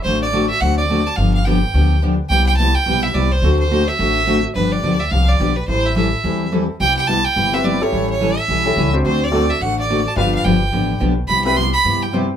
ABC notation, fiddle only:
X:1
M:4/4
L:1/8
Q:"Swing" 1/4=214
K:C
V:1 name="Fiddle"
c d2 e ^f d2 a | f f g4 z2 | g g a g2 e d c- | c c2 e4 z |
B d2 e f d2 B | c e e4 z2 | g g a g2 e d _d- | _d ^c2 e4 z |
c d2 e ^f d2 a | f f g4 z2 | b b c' b2 g z2 |]